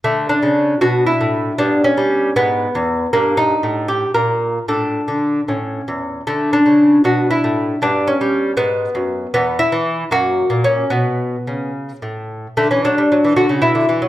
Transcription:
<<
  \new Staff \with { instrumentName = "Lute" } { \time 6/8 \key a \mixolydian \tempo 4. = 77 << { a8 d'4 fis'8 e'4 | d'8 cis'4 b4. | bes8 ees'4 g'8 bes'4 | a'2~ a'8 r8 |
a8 d'4 fis'8 e'4 | d'8 cis'4 b4. | b8 e'4 fis'4 cis'8 | b4. r4. |
\key d \major a16 cis'16 d'4 fis'8 e'4 | } \\ { r4. d'4. | b4. r4. | r2. | d'4. cis'4. |
r4. d'4. | b4. r4. | r4. ais4. | r2. |
r2. | } >> }
  \new Staff \with { instrumentName = "Lute" } { \clef bass \time 6/8 \key a \mixolydian d8. cis8. b,8. a,8. | g,8. g8. gis,8. e,8. | g,4 a,4 bes,4 | a,8. d8. a,8. e,8. |
d8. cis8. b,8. a,8. | g,8. g8. gis,8. fis,8. | e,8. e8. fis,8. ais,8. | b,4 cis4 a,4 |
\key d \major d16 e16 fis16 g16 fis16 e16 d16 cis16 b,16 d16 e16 fis16 | }
>>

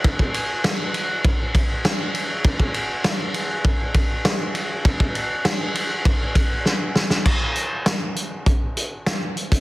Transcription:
\new DrumStaff \with { instrumentName = "Drums" } \drummode { \time 4/4 \tempo 4 = 100 <bd cymr>16 bd16 cymr8 <cymr sn>8 cymr8 <bd cymr>8 <bd cymr>8 <cymr sn>8 cymr8 | <bd cymr>16 bd16 cymr8 <cymr sn>8 cymr8 <bd cymr>8 <bd cymr>8 <cymr sn>8 cymr8 | <bd cymr>16 bd16 cymr8 <cymr sn>8 cymr8 <bd cymr>8 <bd cymr>8 sn8 sn16 sn16 | <cymc bd>8 hh8 <hh sn>8 hh8 <hh bd>8 hh8 <hh sn>8 hh16 <hh bd>16 | }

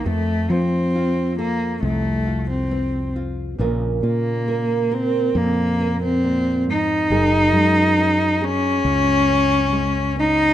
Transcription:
<<
  \new Staff \with { instrumentName = "Nylon-string guitar" } { \time 4/4 \key bes \minor \tempo 4 = 68 << { a'8 c'8 f'8 a'4 f'8 c'8 f'8 | <des f' bes'>8 f'8 bes'8 bes'4 bes'4. | aes'8 aes8 des'8 aes'4 des'8 aes8 des'8 | } \\ { f,2 f,2 | bes,2 bes,4 bes,8 aes,8 | ges,2 des2 | } >> }
  \new Staff \with { instrumentName = "Cello" } { \time 4/4 \key bes \minor a8 c'4 bes8 a8. c'8. r8 | r8 bes4 c'8 bes8. c'8. ees'8~ | ees'4. des'2 ees'8 | }
  \new Staff \with { instrumentName = "Fretless electric bass" } { \clef bass \time 4/4 \key bes \minor f,8 f4. c,2 | bes,,8 bes,4. f,2 | ges,,8 ges,4. des,2 | }
>>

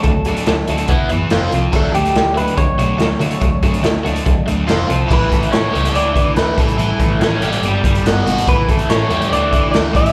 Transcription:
<<
  \new Staff \with { instrumentName = "Clean electric guitar" } { \time 4/4 \key d \major \tempo 4 = 142 a'4 r2. | a'8 g'4 b'8 cis''2~ | cis''2. r4 | b'8 a'8 cis''4 d''4 b'8 a'8~ |
a'2.~ a'8 r8 | b'8 a'8 cis''4 d''4 d''8 e''8 | }
  \new Staff \with { instrumentName = "Overdriven electric guitar" } { \time 4/4 \key d \major <fis a>8 <fis a>8 <fis a>8 <fis a>8 <e b e'>8 <e b>8 <f c' f'>8 <f c'>8 | <fis a d'>8 <fis a>8 <fis a>8 <fis a>8 <fis a>8 <fis a>8 <fis a>8 <fis a>8 | <fis a>8 <fis a>8 <fis a>8 <fis a>8 <fis a>8 <fis a>8 <f c' f'>8 <f c'>8 | e8 a8 cis'8 g'8 e8 e8 a8 e8 |
e8 a8 cis'8 g'8 g8 g8 b8 fis'8 | e8 a8 cis'8 g'8 e8 e8 a8 e8 | }
  \new Staff \with { instrumentName = "Overdriven electric guitar" } { \time 4/4 \key d \major <a d' fis' a'>8 <a d' fis' a'>8 r8 <a d' fis' a'>8 r8 <e b e' b'>8 r8 <f c' f' c''>8 | r8 <d a d' fis'>8 r8 <d a d' fis'>8 r8 <d a d' fis'>8 r8 <d a d' fis'>8 | r8 <d a d' fis'>8 r8 <d a d' fis'>8 r8 <d a d' fis'>8 r8 <f c' f' c''>8 | <a, e g>8 <a, e>8 <a, e>8 <a, e g>8 <d a d'>8 <d a d'>8 <d a>8 <a, e g>8 |
<a, e g>8 <a, e>8 <a, e>8 <a, e g>8 <g b e'>8 <g b e'>8 <g b>8 <g b>8 | <a, e g>8 <a, e>8 <a, e>8 <a, e g>8 <d a d'>8 <d a d'>8 <d a>8 <a, e g>8 | }
  \new Staff \with { instrumentName = "Picked electric bass" } { \clef bass \time 4/4 \key d \major d,4 d,8 d,8 e,,8 fis,,8 f,,8 c,8 | d,8 d,8 d,4 d,8 b,,8 d,8 d8 | d,4 d,8 d,8 d,8 d,8 f,,8 c,8 | a,,8 a,,8 a,,8 cis,8 d,4 d,8 a,,8 |
a,,8 a,,8 a,,8 a,,8 g,,8 g,,8 g,,8 gis,,8 | a,,8 a,,8 a,,8 e,8 d,4 d,8 a,,8 | }
  \new DrumStaff \with { instrumentName = "Drums" } \drummode { \time 4/4 <hh bd>8 hh16 hh16 <hh sn>8 hh16 hh16 <hh bd>8 hh8 <hh sn>8 hh8 | <hh bd>8 hh16 hh16 <hh sn>8 hh16 hh16 <hh bd>8 hh8 <hh sn>8 hh16 hh16 | <hh bd>8 <hh bd>16 hh16 <hh sn>8 hh16 hh16 <hh bd>8 hh8 <hh sn>8 hh8 | <cymc bd>8 <hh bd>16 hh16 <hh sn>8 hh16 hh16 hh8 <hh bd>8 <hh sn>8 <hh bd sn>16 hh16 |
hh8 <hh bd>8 <hh sn>8 hh16 hh16 hh8 <hh bd>16 hh16 <hh sn>8 <hh sn>16 hh16 | <hh bd>8 <hh bd>16 hh16 <hh sn>8 hh16 hh16 hh8 <hh bd>8 <hh sn>8 <hh bd>16 hh16 | }
>>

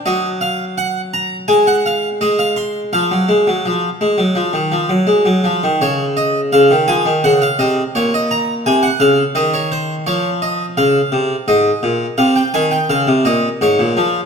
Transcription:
<<
  \new Staff \with { instrumentName = "Harpsichord" } { \time 4/4 \key des \major \tempo 4 = 84 ees''8 f''8 ges''8 bes''8 aes''16 ges''16 f''8 ees''16 f''16 c'''8 | f''2.~ f''8 r8 | des''8 ees''8 f''8 aes''8 ges''16 f''16 ees''8 des''16 ees''16 bes''8 | aes''16 ges''16 f''8 ees''16 des''16 c''8 des''8 ees''8 f''4 |
ees''4 f''16 g''16 aes''16 g''16 f''8 ees''8 des''4 | }
  \new Staff \with { instrumentName = "Harpsichord" } { \clef bass \time 4/4 \key des \major ges2 aes4 aes4 | f16 ges16 aes16 ges16 f8 aes16 ges16 f16 ees16 f16 ges16 aes16 ges16 f16 ees16 | des4 des16 ees16 f16 ees16 des8 c8 bes,4 | c8 des8 ees4 f4 des8 c8 |
aes,8 bes,8 c8 ees8 des16 c16 bes,8 aes,16 bes,16 f8 | }
>>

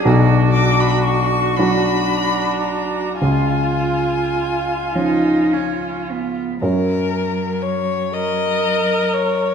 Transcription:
<<
  \new Staff \with { instrumentName = "Violin" } { \time 6/8 \key fis \major \tempo 4. = 39 r8 d'''16 b''16 cis'''8 b''4 ais''8 | gis''2~ gis''8 r8 | ais'4 cis''8 dis''4 cis''8 | }
  \new Staff \with { instrumentName = "Viola" } { \time 6/8 \key fis \major d'4. d'4. | eis'2. | r4. ais'4. | }
  \new Staff \with { instrumentName = "Cello" } { \time 6/8 \key fis \major fis'2. | eis'4. dis'8 cis'8 b8 | fis2. | }
  \new Staff \with { instrumentName = "Grand piano" } { \clef bass \time 6/8 \key fis \major <b,, b,>4. <fis d' fis'>4. | <cis, cis>4. <eis cis'>4. | <fis, fis cis' ais'>2. | }
>>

